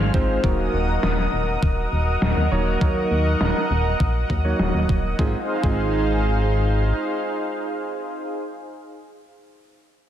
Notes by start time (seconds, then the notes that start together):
Already playing: G#2 G#3 C4 D#4 F4 G#4 C5 F5 G#5 F6
0.00 G#1
0.14 G#1 G#3 C4 D#4 F4 C5, kick
0.44 D#1 F#3 A#3 D#4 F#4 A#4 D#5 F#5 D#6, kick
0.73 D#1
1.03 D#1, snare
1.33 D#1
1.63 D#1, kick
1.92 D#1
2.22 D#1, snare
2.37 D#2
2.52 D#1 F#3 A#3 D#4 F#4 C#5
2.81 D#2 F#3 A#3 D#4 F#4 A#4, kick
3.11 D#2
3.41 D#1, snare
3.71 D#1
4.00 A#1, kick
4.30 D#2, kick
4.45 F#3 A#3 D#4 F#4 C#5
4.59 D#1, snare
4.74 D#1
4.89 D#1, kick
5.19 G#1 G#3 C4 D#4 F4 G#4 C5 F5, kick
5.63 G#1 G#3 C4 D#4 F4 G#4, kick